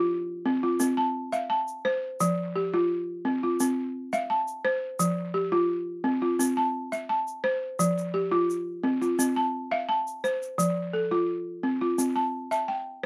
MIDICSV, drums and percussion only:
0, 0, Header, 1, 2, 480
1, 0, Start_track
1, 0, Key_signature, -1, "major"
1, 0, Tempo, 698487
1, 1517, Time_signature, 4, 2, 24, 8
1, 8973, End_track
2, 0, Start_track
2, 0, Title_t, "Drums"
2, 549, Note_on_c, 9, 82, 68
2, 618, Note_off_c, 9, 82, 0
2, 912, Note_on_c, 9, 82, 21
2, 981, Note_off_c, 9, 82, 0
2, 1153, Note_on_c, 9, 82, 19
2, 1222, Note_off_c, 9, 82, 0
2, 1514, Note_on_c, 9, 82, 63
2, 1582, Note_off_c, 9, 82, 0
2, 2474, Note_on_c, 9, 82, 69
2, 2542, Note_off_c, 9, 82, 0
2, 2838, Note_on_c, 9, 82, 21
2, 2907, Note_off_c, 9, 82, 0
2, 3077, Note_on_c, 9, 82, 21
2, 3145, Note_off_c, 9, 82, 0
2, 3434, Note_on_c, 9, 82, 67
2, 3503, Note_off_c, 9, 82, 0
2, 4398, Note_on_c, 9, 82, 76
2, 4467, Note_off_c, 9, 82, 0
2, 4759, Note_on_c, 9, 82, 22
2, 4828, Note_off_c, 9, 82, 0
2, 5000, Note_on_c, 9, 82, 21
2, 5068, Note_off_c, 9, 82, 0
2, 5359, Note_on_c, 9, 82, 66
2, 5428, Note_off_c, 9, 82, 0
2, 5485, Note_on_c, 9, 82, 22
2, 5554, Note_off_c, 9, 82, 0
2, 5841, Note_on_c, 9, 82, 24
2, 5910, Note_off_c, 9, 82, 0
2, 6200, Note_on_c, 9, 82, 21
2, 6269, Note_off_c, 9, 82, 0
2, 6319, Note_on_c, 9, 82, 75
2, 6387, Note_off_c, 9, 82, 0
2, 6922, Note_on_c, 9, 82, 21
2, 6991, Note_off_c, 9, 82, 0
2, 7041, Note_on_c, 9, 82, 22
2, 7109, Note_off_c, 9, 82, 0
2, 7164, Note_on_c, 9, 82, 21
2, 7233, Note_off_c, 9, 82, 0
2, 7279, Note_on_c, 9, 82, 62
2, 7348, Note_off_c, 9, 82, 0
2, 8237, Note_on_c, 9, 82, 67
2, 8306, Note_off_c, 9, 82, 0
2, 8602, Note_on_c, 9, 82, 21
2, 8671, Note_off_c, 9, 82, 0
2, 8973, End_track
0, 0, End_of_file